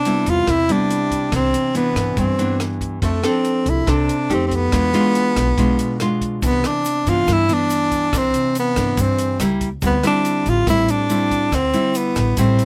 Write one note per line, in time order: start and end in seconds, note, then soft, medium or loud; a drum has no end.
0.00 0.46 C3 medium
0.00 0.31 D4 medium
0.05 0.47 G3 medium
0.05 0.48 B3 soft
0.05 0.48 E4 medium
0.05 closed hi-hat soft
0.26 0.46 E2 medium
0.26 0.51 F4 medium
0.26 kick soft
0.26 closed hi-hat soft
0.47 0.67 E2 medium
0.47 1.30 C3 medium
0.47 0.73 E4 loud
0.47 kick medium
0.47 cross-stick medium
0.47 closed hi-hat medium
0.69 1.29 G3 medium
0.69 1.29 B3 medium
0.69 1.34 D4 medium
0.69 1.30 E4 medium
0.69 closed hi-hat soft
0.91 closed hi-hat soft
1.11 kick soft
1.11 closed hi-hat soft
1.32 1.52 C2 loud
1.32 2.15 C3 soft
1.32 1.72 E3 soft
1.32 1.74 C4 medium
1.32 1.72 D4 medium
1.32 kick medium
1.32 cross-stick medium
1.32 closed hi-hat medium
1.54 closed hi-hat soft
1.75 2.35 E3 medium
1.75 2.35 B3 soft
1.75 2.22 B3 medium
1.75 2.36 D4 medium
1.75 closed hi-hat soft
1.95 2.16 G2 medium
1.95 kick soft
1.95 cross-stick medium
1.95 closed hi-hat soft
2.17 2.37 G2 medium
2.17 3.00 G2 medium
2.17 2.61 C4 medium
2.17 kick medium
2.17 closed hi-hat medium
2.38 2.99 E3 medium
2.38 2.99 B3 medium
2.38 2.99 D4 medium
2.38 closed hi-hat soft
2.60 cross-stick medium
2.60 closed hi-hat soft
2.81 kick soft
2.81 closed hi-hat soft
3.02 3.22 F2 medium
3.02 3.85 F3 medium
3.02 3.28 A3 medium
3.02 3.20 C4 soft
3.02 3.20 D4 medium
3.02 3.21 A4 medium
3.02 kick medium
3.02 closed hi-hat medium
3.23 3.84 C4 medium
3.23 3.71 C4 medium
3.23 3.84 D4 medium
3.23 3.84 A4 medium
3.23 cross-stick medium
3.23 closed hi-hat soft
3.45 closed hi-hat soft
3.66 3.86 C2 medium
3.66 3.91 E4 medium
3.66 kick soft
3.66 closed hi-hat soft
3.87 4.07 C2 medium
3.87 4.27 C3 medium
3.87 4.15 C4 medium
3.87 4.15 D4 medium
3.87 4.35 D4 medium
3.87 4.15 A4 medium
3.87 kick medium
3.87 cross-stick medium
3.87 closed hi-hat medium
4.09 closed hi-hat soft
4.29 4.69 F2 medium
4.29 4.71 A3 medium
4.29 4.71 D#4 medium
4.29 4.71 G4 medium
4.29 closed hi-hat soft
4.34 4.46 C4 medium
4.47 4.57 C4 medium
4.47 kick soft
4.47 closed hi-hat soft
4.56 6.23 B3 loud
4.72 4.92 E2 medium
4.72 5.55 E3 medium
4.72 4.90 G#3 soft
4.72 4.90 D4 soft
4.72 4.91 F4 medium
4.72 kick medium
4.72 cross-stick medium
4.72 closed hi-hat medium
4.93 5.54 G#3 medium
4.93 5.54 D4 medium
4.93 5.54 F4 medium
4.93 closed hi-hat soft
5.15 closed hi-hat soft
5.36 5.56 B1 medium
5.36 kick soft
5.36 cross-stick medium
5.36 closed hi-hat soft
5.58 5.77 B1 medium
5.58 6.40 B2 medium
5.58 5.97 G#3 medium
5.58 5.97 D4 medium
5.58 5.97 F4 medium
5.58 kick medium
5.58 closed hi-hat medium
5.79 closed hi-hat soft
6.00 6.41 G#3 medium
6.00 6.41 D4 medium
6.00 6.42 F4 medium
6.00 cross-stick medium
6.00 closed hi-hat soft
6.21 kick soft
6.21 closed hi-hat soft
6.42 6.62 C2 loud
6.42 7.26 C3 soft
6.42 6.85 E3 soft
6.42 6.85 B3 soft
6.42 6.68 B3 medium
6.42 6.85 D4 medium
6.42 kick medium
6.42 closed hi-hat soft
6.42 shaker medium
6.64 7.10 D4 medium
6.64 cross-stick medium
6.64 closed hi-hat soft
6.64 shaker soft
6.85 closed hi-hat soft
6.85 shaker medium
7.06 7.26 G2 medium
7.06 7.46 E3 medium
7.06 7.46 B3 medium
7.06 7.46 D4 medium
7.06 7.33 F4 medium
7.06 kick soft
7.06 closed hi-hat soft
7.06 shaker soft
7.27 7.47 G2 medium
7.27 8.11 G2 medium
7.27 kick medium
7.27 cross-stick medium
7.27 closed hi-hat medium
7.27 shaker medium
7.32 7.55 E4 medium
7.49 8.09 E3 medium
7.49 8.09 B3 medium
7.49 8.09 D4 medium
7.49 closed hi-hat soft
7.49 shaker soft
7.54 8.19 D4 loud
7.70 closed hi-hat soft
7.70 shaker medium
7.92 kick soft
7.92 closed hi-hat soft
7.92 shaker soft
8.13 8.32 C2 loud
8.13 8.96 C3 medium
8.13 8.73 E3 soft
8.13 8.74 D4 medium
8.13 kick medium
8.13 cross-stick medium
8.13 closed hi-hat medium
8.13 shaker medium
8.17 8.57 C4 medium
8.34 closed hi-hat soft
8.34 shaker soft
8.55 closed hi-hat soft
8.55 shaker medium
8.59 9.03 B3 medium
8.76 8.96 G2 medium
8.76 9.37 E3 medium
8.76 9.38 D4 medium
8.76 kick soft
8.76 cross-stick medium
8.76 closed hi-hat soft
8.76 shaker soft
8.97 9.17 G2 medium
8.97 9.38 G2 medium
8.97 kick medium
8.97 closed hi-hat medium
8.97 shaker medium
9.02 9.42 C4 medium
9.18 closed hi-hat soft
9.18 shaker soft
9.40 9.80 C#2 medium
9.40 9.68 G3 medium
9.40 9.68 A#3 medium
9.40 9.68 E4 medium
9.40 cross-stick medium
9.40 closed hi-hat soft
9.40 shaker medium
9.61 kick soft
9.61 closed hi-hat soft
9.61 shaker soft
9.82 10.02 D2 loud
9.82 10.66 D3 medium
9.82 9.95 G3 medium
9.82 9.96 C4 soft
9.82 9.96 E4 medium
9.82 kick medium
9.82 closed hi-hat medium
9.82 shaker medium
9.86 10.04 B3 medium
10.03 10.64 G3 medium
10.03 10.64 C4 medium
10.03 10.51 D4 medium
10.03 10.64 E4 medium
10.03 cross-stick medium
10.03 closed hi-hat soft
10.03 shaker soft
10.25 closed hi-hat soft
10.25 shaker medium
10.46 10.66 A1 medium
10.46 10.69 F4 medium
10.46 kick soft
10.46 closed hi-hat soft
10.46 shaker soft
10.67 10.87 A1 medium
10.67 11.50 A2 medium
10.67 11.06 G3 medium
10.67 11.06 C4 medium
10.67 11.07 E4 medium
10.67 10.93 E4 loud
10.67 kick medium
10.67 cross-stick medium
10.67 closed hi-hat medium
10.67 shaker medium
10.88 11.56 D4 loud
10.88 closed hi-hat soft
10.88 shaker soft
11.09 11.52 G3 medium
11.09 11.52 C4 medium
11.09 11.53 E4 medium
11.09 closed hi-hat soft
11.09 shaker medium
11.31 kick soft
11.31 closed hi-hat soft
11.31 shaker soft
11.52 11.72 D2 medium
11.52 12.35 D3 soft
11.52 11.99 C4 medium
11.52 kick medium
11.52 cross-stick medium
11.52 closed hi-hat medium
11.52 shaker medium
11.73 12.34 G3 medium
11.73 12.35 E4 medium
11.73 closed hi-hat soft
11.73 shaker soft
11.94 12.39 B3 medium
11.94 closed hi-hat soft
11.94 shaker medium
12.15 12.36 A1 medium
12.15 kick soft
12.15 cross-stick medium
12.15 closed hi-hat soft
12.15 shaker soft
12.37 12.57 A1 medium
12.37 12.65 A2 medium
12.37 12.65 G3 medium
12.37 12.65 C4 medium
12.37 12.65 E4 medium
12.37 kick medium
12.37 closed hi-hat medium
12.37 shaker medium
12.59 closed hi-hat soft
12.59 shaker soft